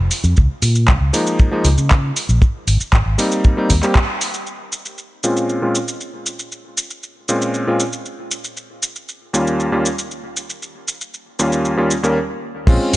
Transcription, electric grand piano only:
1.13 1.49 F3 medium
1.13 1.49 G#3 medium
1.13 1.49 A#3 medium
1.13 1.49 D#4 medium
1.51 1.65 F3 medium
1.51 1.66 G#3 medium
1.51 1.66 A#3 medium
1.51 1.66 D#4 loud
3.18 3.54 G3 medium
3.18 3.54 A#3 medium
3.18 3.54 C4 medium
3.18 3.54 D#4 medium
3.57 3.71 G3 medium
3.57 3.71 A#3 medium
3.57 3.71 C4 medium
3.57 3.71 D#4 medium
3.82 3.96 G3 medium
3.82 3.97 A#3 medium
3.82 3.97 C4 medium
3.82 3.97 G4 loud
5.24 5.59 A#2 medium
5.24 5.59 G#3 medium
5.24 5.59 C4 medium
5.24 5.60 C#4 medium
5.24 5.60 F4 medium
5.62 5.76 A#2 medium
5.62 5.76 G#3 medium
5.62 5.76 C4 medium
5.62 5.76 C#4 medium
5.62 5.76 F4 medium
7.29 7.64 A#2 medium
7.29 7.64 G#3 medium
7.29 7.65 C4 medium
7.29 7.65 C#4 medium
7.29 7.65 F4 medium
7.67 7.81 A#2 medium
7.67 7.81 G#3 medium
7.67 7.81 C4 medium
7.67 7.82 C#4 medium
7.67 7.82 F4 medium
9.33 9.69 D#2 medium
9.33 9.69 G3 medium
9.33 9.70 A#3 medium
9.33 9.70 C#4 medium
9.33 9.70 F4 medium
9.72 9.86 D#2 medium
9.72 9.86 G3 medium
9.72 9.86 A#3 medium
9.72 9.86 C#4 medium
9.72 9.86 F4 medium
11.39 11.75 D#2 medium
11.39 11.75 G3 medium
11.39 11.75 A#3 medium
11.39 11.75 C#4 medium
11.39 11.75 F4 medium
11.77 11.91 D#2 medium
11.77 11.91 G3 medium
11.77 11.92 A#3 medium
11.77 11.92 C#4 medium
11.77 11.92 F4 medium
12.03 12.16 D#2 medium
12.03 12.16 G3 medium
12.03 12.16 A#3 medium
12.03 12.16 C#4 medium
12.03 12.17 A#4 medium
12.67 12.97 G#3 loud
12.67 12.97 C4 medium
12.67 12.97 C#4 medium
12.67 12.97 F4 loud

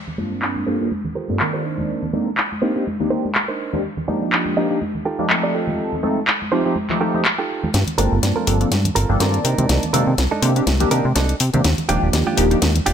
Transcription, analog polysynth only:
0.18 0.64 G2 medium
0.18 0.64 A#3 medium
0.18 0.64 C4 medium
0.18 0.64 D4 medium
0.18 0.65 F4 medium
0.18 0.65 A5 medium
0.66 0.77 G2 medium
0.66 0.77 A#3 medium
0.66 0.77 C4 medium
0.66 0.78 D4 medium
0.66 0.78 F4 medium
0.66 0.78 A4 loud
0.80 0.89 G2 medium
0.80 0.89 A#3 medium
0.80 0.89 C4 medium
0.80 0.89 D4 medium
0.80 0.89 F4 medium
0.80 0.89 A4 medium
1.29 1.37 G2 medium
1.29 1.38 A#3 medium
1.29 1.38 C4 medium
1.29 1.38 D4 medium
1.29 1.38 F4 medium
1.29 1.38 A4 loud
1.39 2.11 D#3 medium
1.39 2.10 A#3 medium
1.39 2.11 C4 medium
1.39 2.11 D5 medium
1.39 2.11 A5 medium
2.13 2.29 A#3 medium
2.13 2.30 C4 medium
2.13 2.30 D4 medium
2.13 2.30 D#4 medium
2.13 2.30 A4 loud
2.62 2.72 A#3 medium
2.62 2.73 C4 medium
2.62 2.73 D4 medium
2.62 2.73 D#4 medium
2.62 2.73 G4 loud
2.75 2.84 A#3 medium
2.75 2.84 C4 medium
2.75 2.84 D4 medium
2.75 2.84 D#4 medium
2.75 2.84 G4 loud
3.00 3.08 A#3 medium
3.00 3.08 C4 medium
3.00 3.09 D4 medium
3.00 3.09 D#4 medium
3.00 3.09 G4 loud
3.11 3.27 A#3 medium
3.11 3.27 C4 medium
3.11 3.27 D4 medium
3.11 3.27 D#4 medium
3.11 3.27 G4 medium
3.73 3.82 A#3 medium
3.73 3.82 C4 medium
3.73 3.82 D4 medium
3.73 3.82 D#4 medium
3.73 3.82 G4 medium
4.08 4.54 F3 medium
4.08 4.55 A#3 medium
4.08 4.55 D4 medium
4.08 4.55 D#4 medium
4.08 4.55 G4 medium
4.57 4.68 F3 medium
4.57 4.68 A#3 medium
4.57 4.68 D4 medium
4.57 4.68 D#4 medium
4.57 4.68 G4 loud
4.70 4.79 F3 medium
4.70 4.79 A#3 medium
4.70 4.79 D4 medium
4.70 4.79 D#4 medium
4.70 4.79 G4 medium
5.19 5.27 F3 medium
5.19 5.27 A#3 medium
5.19 5.28 D4 medium
5.19 5.28 D#4 medium
5.19 5.28 G4 loud
5.29 6.00 F3 medium
5.29 6.01 A3 medium
5.29 6.01 C4 medium
5.29 6.01 D#4 medium
5.29 6.01 A4 medium
6.03 6.19 F3 medium
6.03 6.20 A3 medium
6.03 6.20 C4 medium
6.03 6.20 D#4 medium
6.03 6.20 A4 loud
6.52 6.63 F3 medium
6.52 6.63 A3 medium
6.52 6.63 C4 medium
6.52 6.63 D#4 medium
6.52 6.63 G4 loud
6.65 6.74 F3 medium
6.65 6.74 A3 medium
6.65 6.74 C4 medium
6.65 6.74 D#4 medium
6.65 6.74 G4 loud
6.90 6.98 F3 medium
6.90 6.98 A3 medium
6.90 6.99 C4 medium
6.90 6.99 D#4 medium
6.90 6.99 G4 loud
7.00 7.12 F3 medium
7.00 7.12 A3 medium
7.00 7.12 C4 medium
7.00 7.13 D#4 medium
7.00 7.13 G4 medium
7.14 7.23 F3 medium
7.14 7.23 A3 medium
7.14 7.23 C4 medium
7.14 7.23 D#4 medium
7.14 7.23 G4 medium
7.98 8.44 F3 medium
7.98 8.45 A#3 medium
7.98 8.45 C4 medium
7.98 8.45 D4 medium
7.98 8.45 A5 medium
8.47 8.58 F3 medium
8.47 8.58 A#3 medium
8.47 8.58 C4 medium
8.47 8.58 D4 medium
8.47 8.58 A4 loud
8.60 8.69 F3 medium
8.60 8.69 A#3 medium
8.60 8.69 C4 medium
8.60 8.69 D4 medium
8.60 8.70 A4 medium
9.09 9.18 F3 medium
9.09 9.18 A#3 medium
9.09 9.18 C4 medium
9.09 9.18 D4 medium
9.09 9.18 A4 loud
9.20 9.91 D#3 medium
9.20 9.91 A#3 medium
9.20 9.91 C4 medium
9.20 9.91 D5 medium
9.20 9.91 A5 medium
9.93 10.10 D#3 medium
9.93 10.10 A#3 medium
9.93 10.10 C4 medium
9.93 10.10 D4 medium
9.93 10.10 A4 loud
10.42 10.53 D#3 medium
10.42 10.53 A#3 medium
10.42 10.53 C4 medium
10.42 10.53 D4 medium
10.42 10.53 G4 loud
10.56 10.64 D#3 medium
10.56 10.64 A#3 medium
10.56 10.65 C4 medium
10.56 10.65 D4 medium
10.56 10.65 G4 loud
10.80 10.89 D#3 medium
10.80 10.89 A#3 medium
10.80 10.89 C4 medium
10.80 10.89 D4 medium
10.80 10.89 G4 loud
10.91 11.07 D#3 medium
10.91 11.08 A#3 medium
10.91 11.08 C4 medium
10.91 11.08 D4 medium
10.91 11.08 G4 medium
11.53 11.62 D#3 medium
11.53 11.62 A#3 medium
11.53 11.62 C4 medium
11.53 11.62 D4 medium
11.53 11.62 G4 medium
11.88 12.35 D#3 medium
11.88 12.35 F3 medium
11.88 12.35 A#3 medium
11.88 12.35 D4 medium
11.88 12.35 G4 medium
12.37 12.48 F3 medium
12.37 12.48 A#3 medium
12.37 12.48 D4 medium
12.37 12.48 D#4 medium
12.37 12.48 G4 loud
12.50 12.59 F3 medium
12.50 12.59 A#3 medium
12.50 12.60 D4 medium
12.50 12.60 D#4 medium
12.50 12.60 G4 medium

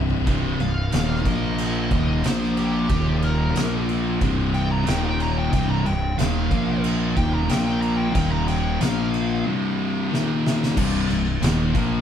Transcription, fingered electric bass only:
0.00 0.25 C1 medium
0.27 0.58 C1 medium
0.60 0.91 C1 medium
0.93 1.24 D#1 medium
1.25 1.88 A#1 medium
1.91 2.22 D#1 loud
2.24 2.86 A#1 loud
2.90 3.52 D#1 medium
3.56 4.17 A#1 medium
4.22 4.83 C1 loud
4.87 5.49 D#1 loud
5.53 5.83 C1 loud
5.87 6.17 C1 medium
6.19 6.49 D#1 medium
6.51 7.13 A#1 loud
7.17 7.47 D#1 loud
7.50 8.11 A#1 loud
8.15 8.76 D#1 loud
8.81 9.42 A#1 medium
10.77 11.07 C1 medium
11.10 11.40 C1 medium
11.41 11.72 D#1 medium
11.75 12.01 A#1 loud

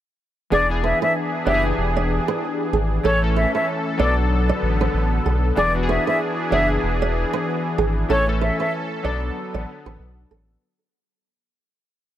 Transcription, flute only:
0.52 0.68 D5 loud
0.84 0.99 E5 medium
1.02 1.13 E5 medium
1.47 1.62 E5 medium
3.05 3.20 C#5 loud
3.36 3.52 E5 medium
3.55 3.66 E5 medium
3.99 4.15 D5 medium
5.57 5.73 D5 loud
5.89 6.04 E5 medium
6.07 6.18 E5 medium
6.52 6.67 E5 medium
8.10 8.25 C#5 loud
8.42 8.57 E5 medium
8.60 8.71 E5 medium
9.05 9.20 D5 medium

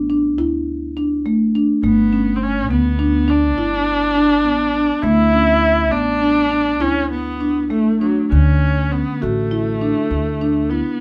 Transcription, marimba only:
0.10 0.29 D4 medium
0.38 0.78 E4 medium
0.97 1.17 D4 medium
1.26 1.46 A3 medium
1.55 1.75 D4 medium
1.84 2.04 A3 medium
2.13 2.52 C#4 medium
2.71 2.90 B3 medium
2.99 3.19 D4 medium
3.28 3.48 D4 medium
3.58 3.98 E4 medium
4.15 4.36 D4 medium
4.45 4.65 B3 medium
4.75 4.94 D4 medium
5.04 5.24 A3 medium
5.33 5.73 C#4 medium
5.92 6.12 B3 medium
6.21 6.42 D4 medium
6.51 6.71 D4 medium
6.80 7.21 E4 medium
7.41 7.61 D4 medium
7.70 7.91 A3 medium
8.02 8.22 D4 medium
8.31 8.73 D3 medium
8.92 9.12 C#4 medium
9.22 9.42 F#4 medium
9.51 9.72 E4 medium
9.81 10.22 D4 medium
10.41 10.61 D4 medium
10.71 10.91 E4 medium

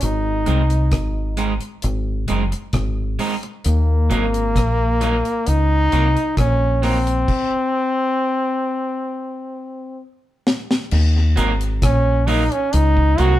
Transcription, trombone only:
0.02 1.38 D#4 medium
3.66 5.49 A#3 loud
5.48 6.38 D#4 loud
6.39 6.85 C#4 medium
6.84 10.01 C4 medium
11.84 12.30 C#4 medium
12.28 12.54 D#4 medium
12.53 12.76 C#4 medium
12.74 13.21 D#4 loud
13.20 13.39 F#4 loud

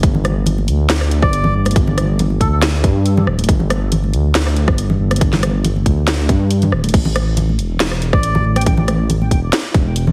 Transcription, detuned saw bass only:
0.03 0.69 G1 loud
0.68 0.88 D2 medium
0.89 1.24 D2 medium
1.22 1.53 G1 medium
1.54 2.42 G1 medium
2.41 2.85 D2 medium
2.84 3.28 G2 loud
3.27 3.47 D1 loud
3.49 4.15 G1 loud
4.13 4.33 D2 loud
4.35 4.69 D2 medium
4.68 4.98 G1 medium
5.00 5.87 G1 medium
5.86 6.30 D2 loud
6.29 6.74 G2 loud
6.72 6.92 D1 loud
6.94 7.60 A1 loud
7.59 7.79 E1 medium
7.80 8.15 E1 medium
8.13 8.44 A1 medium
8.45 9.33 A1 medium
9.31 9.51 E1 medium
9.74 10.12 E1 loud

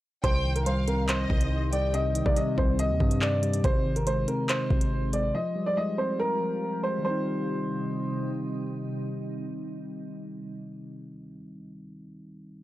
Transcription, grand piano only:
0.24 0.54 C5 loud
0.56 0.65 A#4 medium
0.66 0.85 C5 medium
0.88 1.07 A#4 medium
1.09 1.69 C5 medium
1.73 1.92 D5 medium
1.94 2.24 D#5 medium
2.26 2.35 D5 medium
2.37 2.56 D#5 medium
2.58 2.77 C5 medium
2.79 3.19 D#5 medium
3.22 3.62 D5 medium
3.64 3.94 C5 loud
3.96 4.06 A#4 medium
4.07 4.26 C5 loud
4.28 4.47 A#4 medium
4.49 5.09 C5 loud
5.13 5.32 D5 medium
5.35 5.64 D#5 medium
5.66 5.76 D5 medium
5.77 5.96 D#5 medium
5.98 6.17 C5 medium
6.20 6.80 A#4 medium
6.83 7.03 C5 medium
7.05 8.28 C5 medium

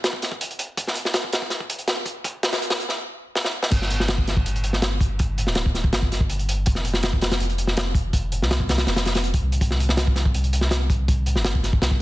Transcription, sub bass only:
3.72 4.44 G1 loud
4.46 5.49 G1 medium
5.47 5.91 D1 medium
5.93 6.65 G1 loud
6.67 7.39 F1 loud
7.40 8.43 F1 medium
8.42 8.86 C2 medium
8.87 9.42 F1 medium
9.43 9.59 C2 medium
9.61 10.33 C2 loud
10.35 11.38 C2 medium
11.36 11.80 G1 medium
11.82 12.02 C2 loud

